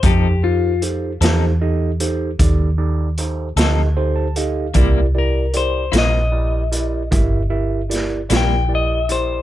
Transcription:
<<
  \new Staff \with { instrumentName = "Clean electric guitar" } { \time 12/8 \key f \major \tempo 4. = 51 g'8 f'8 r1 r4 | r8 bes'8 c''8 ees''2. g''8 ees''8 c''8 | }
  \new Staff \with { instrumentName = "Tine electric piano" } { \time 12/8 \key f \major << { r1 r4 c'''16 a''16 f''8 | r1. | } \\ { <ees' g' a' c''>8 <ees' g' a' c''>8 <ees' g' a' c''>8 <ees' g' a' c''>8 <ees' g' a' ees''>8 <ees' g' a' c''>8 <ees' g' a' d''>8 <ees' g' a' d''>8 <ees' g' a' c''>8 <ees' g' a' ees''>8 <ees' g' a' c''>8 <ees' g' a' ees''>8 | <e' g' bes' d''>8 <e' g' bes' d''>8 <e' g' bes' d''>8 <e' g' bes' c''>8 <e' g' bes' d''>8 <e' g' bes' d''>8 <e' g' bes' e''>8 <e' g' bes' e''>8 <e' g' bes' d''>8 <e' g' bes' d''>8 <e' g' bes' d''>8 <e' g' bes' d''>8 | } >> }
  \new Staff \with { instrumentName = "Clean electric guitar" } { \time 12/8 \key f \major <f c' ees' a'>8 r4 <f c' ees' a'>8 r2 r8 <f c' ees' a'>8 r4 | <c g bes e'>8 r4 <c g bes e'>8 r2 r8 <c g bes e'>8 r4 | }
  \new Staff \with { instrumentName = "Fingered electric bass" } { \clef bass \time 12/8 \key f \major f,4. e,4. ees,4. d,4. | c,4. bes,,4. g,,4. bes,,4. | }
  \new DrumStaff \with { instrumentName = "Drums" } \drummode { \time 12/8 <hh bd>4 hh8 <hh sn>4 hh8 <hh bd>4 hh8 <hh sn>4 hh8 | <hh bd>4 hh8 <hh sn>4 hh8 <hh bd>4 <hh sn>8 <hh sn>4 hh8 | }
>>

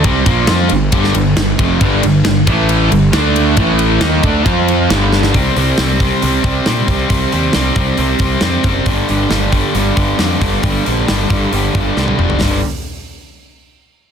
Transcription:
<<
  \new Staff \with { instrumentName = "Distorted electric guitar" } { \clef bass \time 4/4 \key g \minor \tempo 4 = 136 r1 | <g, d g>8 <g, d>8 <g, d>8 <a, e a>4 <g, d>8 <d a d'>4 | <a, e a>4 <ees bes ees'>8 <d a d'>8 <f c' f'>4 <g, d g>4 | r1 |
r1 | r1 | r1 | r1 | }
  \new Staff \with { instrumentName = "Overdriven electric guitar" } { \clef bass \time 4/4 \key g \minor <c g c'>8 <bes, f bes>8 <f c' f'>8 <g, d>8 <g, d g>8 <g, d>8 <g, d>8 <f, c f>8 | <g, d g>8 <g, d>8 <g, d>8 <a, e a>4 <g, d>8 <d a d'>4 | <a, e a>4 <ees bes ees'>8 <d a d'>8 <f c' f'>4 <g, d g>4 | <c g c'>8 <c g c'>8 <c g c'>8 <c g c'>8 <c g c'>8 <c g c'>8 <c g c'>8 <c g c'>8 |
<c g c'>8 <c g c'>8 <c g c'>8 <c g c'>8 <c g c'>8 <c g c'>8 <c g c'>8 <c g c'>8 | <g, d g>8 <g, d g>8 <g, d g>8 <g, d g>8 <g, d g>8 <g, d g>8 <g, d g>8 <g, d g>8 | <g, d g>8 <g, d g>8 <g, d g>8 <g, d g>8 <g, d g>8 <g, d g>8 <g, d g>8 <g, d g>8 | <g, d g>8 r2. r8 | }
  \new Staff \with { instrumentName = "Overdriven electric guitar" } { \clef bass \time 4/4 \key g \minor <c g c'>8 <bes, f bes>8 <f c' f'>8 <g, d>8 <g, d g>8 <g, d>8 <g, d>8 <f, c f>8 | <g, d g>8 <g, d>8 <g, d>8 <a, e a>4 <g, d>8 <d a d'>4 | <a, e a>4 <ees bes ees'>8 <d a d'>8 <f c' f'>4 <g, d g>4 | <c g c'>8 <c g c'>8 <c g c'>8 <c g c'>8 <c g c'>8 <c g c'>8 <c g c'>8 <c g c'>8 |
<c g c'>8 <c g c'>8 <c g c'>8 <c g c'>8 <c g c'>8 <c g c'>8 <c g c'>8 <c g c'>8 | <g, d g>8 <g, d g>8 <g, d g>8 <g, d g>8 <g, d g>8 <g, d g>8 <g, d g>8 <g, d g>8 | <g, d g>8 <g, d g>8 <g, d g>8 <g, d g>8 <g, d g>8 <g, d g>8 <g, d g>8 <g, d g>8 | <g, d g>8 r2. r8 | }
  \new Staff \with { instrumentName = "Picked electric bass" } { \clef bass \time 4/4 \key g \minor c,8 bes,,8 f,8 g,,8 g,,8 g,,8 g,,8 f,,8 | g,,8 g,,8 g,,8 a,,4 g,,8 d,4 | a,,4 ees,8 d,8 f,4 g,,4 | c,8 c,8 c,4 c,8 c,8 bes,8 c,8 |
c,8 ees,8 c,8 c,8 c,8 c,8 f,8 fis,,8 | g,,8 g,,8 g,,4 g,,8 g,,8 f,8 g,,8 | g,,8 bes,,8 g,,8 g,,8 g,,8 g,,8 c,8 f,,8 | g,,8 r2. r8 | }
  \new DrumStaff \with { instrumentName = "Drums" } \drummode { \time 4/4 <bd cymr>8 <bd cymr>8 <cymr sn>8 cymr8 <bd cymr>16 sn16 cymr8 <cymr sn>8 <bd cymr>8 | <bd cymr>8 cymr8 <cymr sn>8 <bd cymr>8 cymr8 cymr8 <cymr sn>8 cymr8 | <bd cymr>8 cymr8 <cymr sn>8 <bd cymr>8 <bd cymr>8 cymr8 <cymr sn>8 sn16 sn16 | <hho bd>8 hho8 <hho sn>8 <hho bd>8 hho8 <hho bd>8 <hho sn>8 <hho bd>8 |
<hho bd>8 hho8 <hho sn>8 <hho bd>8 hho8 <hho bd>8 <hho sn>8 <hho bd>8 | <hho bd>8 hho8 <hho sn>8 <hho bd>8 hho8 <hho bd>8 <hho sn>8 <hho bd>8 | <hho bd>8 hho8 <hho sn>8 <hho bd>8 hho8 <hho bd>8 sn16 tommh16 toml16 tomfh16 | <hho sn tomfh>4 r4 r4 r4 | }
>>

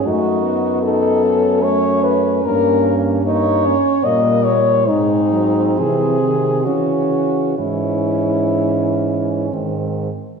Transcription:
<<
  \new Staff \with { instrumentName = "French horn" } { \time 3/4 \key cis \minor \tempo 4 = 71 fis'4 a'4 cis''8 b'8 | bes'8 r8 des''4 dis''8 des''8 | dis'4 gis'4 fis'4 | e'2 r4 | }
  \new Staff \with { instrumentName = "French horn" } { \time 3/4 \key cis \minor dis'4 dis'8 cis'4. | des'4 dis'8 des'8 bes8 r8 | bis2 cis'4 | cis'2 bis8 r8 | }
  \new Staff \with { instrumentName = "French horn" } { \clef bass \time 3/4 \key cis \minor a8 b4. a4 | bes4 bes8 r8 g4 | gis8 fis8 e8 dis8 e4 | e2 dis8 r8 | }
  \new Staff \with { instrumentName = "French horn" } { \clef bass \time 3/4 \key cis \minor fis,2. | g,4. r8 bes,4 | gis,4 bis,4 cis4 | gis,2 gis,8 r8 | }
>>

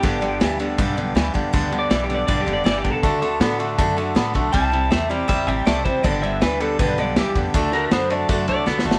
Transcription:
<<
  \new Staff \with { instrumentName = "Clean electric guitar" } { \time 4/4 \key g \major \tempo 4 = 160 g'4. r2 r8 | \tuplet 3/2 { r4 d''8 d''8 g'8 d''8 d''8 g'8 d''8 d''8 g'8 a'8~ } | a'4. r2 r8 | a''4 e''8 d''8 e''8 g''8 d''8 c''8 |
d''8 e''8 b'8 a'8 b'8 d''8 g'8 r8 | r8 bes'8 c''8 d''4 d''8 r4 | }
  \new Staff \with { instrumentName = "Steel-string acoustic guitar" } { \time 4/4 \key g \major <g, d g b d' g'>8 <g b d' g'>8 <g b d' g'>8 <g b d' g'>8 <g, d g b d' g'>8 <g b d' g'>8 <g b d' g'>8 <g b d' g'>8 | <g, d g b d' g'>8 <g b d' g'>8 <g b d' g'>8 <g b d' g'>8 <g, d g b d' g'>8 <g b d' g'>8 <g b d' g'>8 <g b d' g'>8 | <d a d' fis' a'>8 <d' fis' a'>8 <a d' fis' a'>8 <d' fis' a'>8 <d a d' fis' a'>8 <d' fis' a'>8 <a d' fis' a'>8 <d' fis' a'>8 | <c g c' e' g'>8 <c' e' g'>8 <g c' e' g'>8 <c' e' g'>8 <c g c' e' g'>8 <c' e' g'>8 <g c' e' g'>8 <c' e' g'>8 |
<g, d g b d' g'>8 <g b d' g'>8 <g b d' g'>8 <g b d' g'>8 <g, d g b d' g'>8 <g b d' g'>8 <g b d' g'>8 <g b d' g'>8 | <d a d' fis' a'>8 <d' fis' a'>8 <a d' fis' a'>8 <d' fis' a'>8 <d a d' fis' a'>8 <d' fis' a'>8 <a d' fis' a'>8 <d' fis' a'>8 | }
  \new Staff \with { instrumentName = "Clean electric guitar" } { \clef bass \time 4/4 \key g \major <g, d>8 <g, d>8 <g, e>8 <g, d>8 <g, d>8 <g, d>8 <g, e>8 <g, d>8 | <g, d>8 <g, d>8 <g, e>8 <g, d>8 <g, d>8 <g, d>8 <g, e>8 <g, d>8 | <d a>8 <d a>8 <d b>8 <d a>8 <d a>8 <d a>8 <d b>8 <d a>8 | <c g>8 <c g>8 <c a>8 <c g>8 <c g>8 <c g>8 <c a>8 <c g>8 |
<g, d>8 <g, d>8 <g, e>8 <g, d>8 <g, d>8 <g, d>8 <g, e>8 <g, d>8 | <d a>8 <d a>8 <d b>8 <d a>8 <d a>8 <d a>8 <d b>8 <d a>8 | }
  \new Staff \with { instrumentName = "Upright bass" } { \clef bass \time 4/4 \key g \major g,,4 d,4 b,,4 d,8 f,8 | d,4 b,,4 b,,8 f,,8 g,,8 b,,8 | d,4 a,4 fis,4 a,8 b,,8 | c,4 e,4 e,8 a,,8 c,8 e,8 |
g,,4 d,4 b,,4 d,8 f,8 | d,4 fis,4 fis,8 c,8 d,8 fis,,8 | }
  \new DrumStaff \with { instrumentName = "Drums" } \drummode { \time 4/4 <bd cymr sn>8 cymr8 <cymr sn>8 cymr8 <bd cymr>8 cymr8 <cymr sn>8 <bd cymr>8 | <bd cymr sn>8 cymr8 <cymr sn>8 cymr8 <bd cymr>8 cymr8 <cymr sn>8 <bd cymr>8 | <bd cymr>8 cymr8 <cymr sn>8 cymr8 <bd cymr sn>8 cymr8 <cymr sn>8 <bd cymr>8 | <bd cymr>8 cymr8 <cymr sn>8 cymr8 <bd cymr>8 cymr8 <cymr sn>8 <bd cymr>8 |
<bd cymr>8 cymr8 <cymr sn>8 cymr8 <bd cymr>8 cymr8 <cymr sn>8 <bd cymr>8 | <bd cymr sn>8 <cymr sn>8 <cymr sn>8 cymr8 <bd cymr sn>8 cymr8 \tuplet 3/2 { sn8 sn8 sn8 } | }
>>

